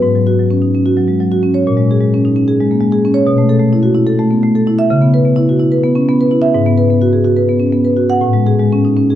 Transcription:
0.02 1.61 G#2 medium
0.16 0.34 F#3 medium
0.27 0.46 F#4 medium
0.39 0.58 F#3 medium
0.50 0.69 C#4 medium
0.62 0.74 D#4 medium
0.75 0.93 C#4 medium
0.86 1.04 F#4 medium
0.97 1.15 F#3 medium
1.08 1.19 G#3 medium
1.20 1.38 F#3 medium
1.32 1.50 F#4 medium
1.43 1.61 C#4 medium
1.54 1.66 C#5 medium
1.67 3.23 A#2 medium
1.77 1.95 G#3 medium
1.91 2.08 G#4 medium
2.00 2.19 G#3 medium
2.14 2.31 C#4 medium
2.25 2.36 D#4 medium
2.36 2.54 C#4 medium
2.48 2.65 G#4 medium
2.60 2.78 G#3 medium
2.71 2.82 A#3 medium
2.81 2.99 G#3 medium
2.92 3.11 G#4 medium
3.05 3.23 C#4 medium
3.14 3.26 C#5 medium
3.27 4.85 B2 medium
3.38 3.56 A3 medium
3.49 3.68 A4 medium
3.60 3.78 A3 medium
3.73 3.91 E4 medium
3.83 3.95 F#4 medium
3.95 4.13 E4 medium
4.07 4.25 A4 medium
4.19 4.37 A3 medium
4.31 4.42 B3 medium
4.43 4.61 A3 medium
4.55 4.73 A4 medium
4.67 4.85 E4 medium
4.79 4.90 E5 medium
4.90 6.50 C#3 medium
5.02 5.20 B3 medium
5.14 5.32 B4 medium
5.25 5.44 B3 medium
5.36 5.55 E4 medium
5.49 5.60 F#4 medium
5.60 5.79 E4 medium
5.72 5.91 B4 medium
5.84 6.02 B3 medium
5.95 6.07 C#4 medium
6.09 6.26 B3 medium
6.21 6.38 B4 medium
6.31 6.49 E4 medium
6.42 6.53 E5 loud
6.54 8.19 G#2 medium
6.66 6.84 B3 medium
6.78 6.96 B4 medium
6.90 7.08 B3 medium
7.01 7.20 F#4 medium
7.13 7.24 G#4 medium
7.25 7.44 F#4 medium
7.36 7.56 B4 medium
7.49 7.68 B3 medium
7.59 7.72 C#4 medium
7.72 7.92 B3 medium
7.85 8.05 B4 medium
7.97 8.17 F#4 medium
8.10 8.23 F#5 medium
8.21 9.15 A2 medium
8.33 8.55 G#3 medium
8.47 8.68 G#4 medium
8.59 8.80 G#3 medium
8.72 8.93 C#4 medium
8.85 8.98 D#4 medium
8.97 9.15 C#4 medium
9.10 9.15 G#4 medium

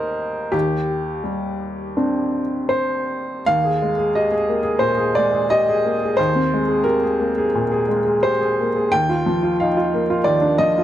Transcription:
0.00 0.49 D#2 medium
0.00 0.56 G3 soft
0.00 0.49 A#3 medium
0.00 0.49 D#4 medium
0.00 0.53 A#4 medium
0.00 0.56 C5 medium
0.00 0.56 D#5 loud
0.52 3.41 D#2 medium
0.52 2.70 G4 medium
1.24 2.40 G3 soft
1.97 3.42 C4 soft
1.97 3.42 D4 soft
2.69 3.45 C5 medium
3.46 4.80 D#2 medium
3.46 4.15 F5 loud
3.64 3.92 G#4 medium
3.82 4.09 G#3 medium
3.98 4.25 G#4 medium
4.15 4.32 G4 soft
4.15 4.83 D#5 medium
4.32 4.59 G#4 medium
4.48 4.76 A#3 medium
4.63 4.92 G#4 medium
4.79 5.08 A#2 soft
4.79 5.15 C5 medium
4.98 5.26 G#4 medium
5.15 5.44 G#3 soft
5.15 5.50 D5 medium
5.33 5.60 G#4 soft
5.50 5.68 G4 soft
5.50 6.18 D#5 medium
5.69 5.95 G#4 medium
5.85 6.12 A#3 soft
6.04 6.29 G#4 soft
6.17 7.49 D#2 medium
6.17 6.84 C5 medium
6.35 6.62 C4 soft
6.54 6.79 G#3 medium
6.68 6.95 G#4 medium
6.84 7.02 G4 soft
6.84 7.86 A#4 medium
7.03 7.29 G#4 medium
7.20 7.46 A#3 medium
7.38 7.64 G#4 medium
7.55 7.81 A#2 soft
7.71 7.98 G#4 medium
7.89 8.15 G#3 medium
8.05 8.32 G#4 soft
8.23 8.39 G4 soft
8.23 8.92 C5 medium
8.40 8.67 G#4 medium
8.60 8.86 A#3 medium
8.76 8.92 G#4 medium
8.92 10.21 D#2 medium
8.92 9.58 G5 loud
9.09 9.35 F4 medium
9.26 9.52 F3 medium
9.43 9.68 F4 medium
9.60 9.76 D#4 soft
9.60 10.24 F5 medium
9.77 10.02 F4 medium
9.94 10.18 A#3 medium
10.10 10.35 F4 medium
10.24 10.84 D#2 medium
10.24 10.57 D5 medium
10.42 10.67 D4 medium
10.58 10.84 F3 medium
10.58 10.84 D#5 medium
10.78 10.84 F4 medium

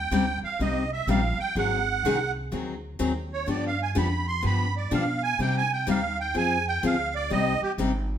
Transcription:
0.00 0.10 D#2 medium
0.00 0.39 G5 medium
0.11 0.40 D2 medium
0.11 0.23 C3 loud
0.11 0.24 G3 medium
0.11 0.24 C4 medium
0.11 0.24 D#4 medium
0.11 0.24 G4 medium
0.43 0.60 F5 medium
0.43 muted upright bass stroke soft
0.59 1.06 C2 medium
0.59 0.82 C3 medium
0.59 0.82 G3 medium
0.59 0.82 C4 medium
0.59 0.82 D#4 medium
0.59 0.82 G4 medium
0.59 0.91 D#5 medium
0.93 1.08 E5 medium
1.07 1.36 A#1 medium
1.07 1.19 C3 medium
1.07 1.20 G3 loud
1.07 1.20 C4 medium
1.07 1.20 D#4 medium
1.07 1.20 G4 medium
1.07 1.39 F5 medium
1.38 1.56 G5 loud
1.38 muted upright bass stroke soft
1.55 2.02 G#1 medium
1.55 1.78 D#3 medium
1.55 1.78 F#3 medium
1.55 1.78 C4 medium
1.55 1.78 D#4 medium
1.55 1.78 G#4 medium
1.55 2.32 F#5 loud
2.03 2.50 C2 medium
2.03 2.16 D#3 loud
2.03 2.16 F#3 medium
2.03 2.16 C4 medium
2.03 2.16 D#4 medium
2.03 2.16 G#4 loud
2.52 2.98 D2 medium
2.52 2.73 D#3 medium
2.52 2.74 F#3 medium
2.52 2.74 C4 medium
2.52 2.74 D#4 medium
2.52 2.74 G#4 medium
2.99 3.46 D#2 medium
2.99 3.11 D#3 loud
2.99 3.11 F#3 loud
2.99 3.11 C4 loud
2.99 3.12 D#4 medium
2.99 3.11 G#4 loud
3.33 3.49 C#5 medium
3.46 3.94 G2 medium
3.46 3.69 D3 medium
3.46 3.69 F3 medium
3.46 3.69 B3 medium
3.46 3.69 D4 medium
3.46 3.70 G4 medium
3.51 3.65 D5 medium
3.67 3.81 F5 medium
3.83 3.97 G#5 medium
3.95 4.42 F2 medium
3.95 4.07 D3 medium
3.95 4.07 F3 medium
3.95 4.07 B3 loud
3.95 4.07 D4 medium
3.95 4.07 G4 loud
3.95 4.26 B5 medium
4.28 4.44 C6 loud
4.42 4.90 G2 medium
4.42 4.65 D3 medium
4.42 4.65 F3 medium
4.42 4.65 B3 medium
4.42 4.65 D4 medium
4.42 4.65 G4 medium
4.42 4.75 B5 loud
4.77 4.92 D5 medium
4.91 5.38 B2 medium
4.91 5.03 D3 medium
4.91 5.03 F3 loud
4.91 5.03 B3 medium
4.91 5.03 D4 medium
4.91 5.03 G4 loud
4.91 5.22 F5 medium
5.23 5.39 G#5 loud
5.39 5.86 C3 medium
5.39 5.61 C3 medium
5.39 5.61 G3 medium
5.39 5.61 C4 medium
5.39 5.61 D#4 medium
5.39 5.62 G4 medium
5.39 5.56 G5 medium
5.58 5.72 G#5 loud
5.73 5.88 G5 medium
5.87 6.34 D#2 medium
5.87 5.98 C3 medium
5.87 5.99 G3 medium
5.87 5.99 C4 medium
5.87 5.99 D#4 loud
5.87 5.99 G4 loud
5.87 6.18 F5 medium
6.20 6.36 G5 medium
6.34 6.81 F2 medium
6.34 6.56 F3 medium
6.34 6.57 C4 medium
6.34 6.57 F4 medium
6.34 6.57 G#4 medium
6.34 6.66 G#5 loud
6.68 6.84 G5 medium
6.83 7.29 D2 loud
6.83 6.94 F3 loud
6.83 6.95 C4 medium
6.83 6.95 F4 loud
6.83 6.95 G#4 medium
6.83 7.14 F5 medium
7.15 7.31 D5 loud
7.30 7.60 C2 medium
7.30 7.52 C3 medium
7.30 7.52 G3 medium
7.30 7.53 C4 medium
7.30 7.53 D#4 medium
7.30 7.53 G4 medium
7.30 7.61 D#5 loud
7.62 7.72 G4 medium
7.62 muted upright bass stroke soft
7.78 8.18 G#1 medium
7.78 7.90 C3 loud
7.78 7.90 G3 medium
7.78 7.90 C4 medium
7.78 7.90 D#4 loud
7.78 7.91 G4 loud

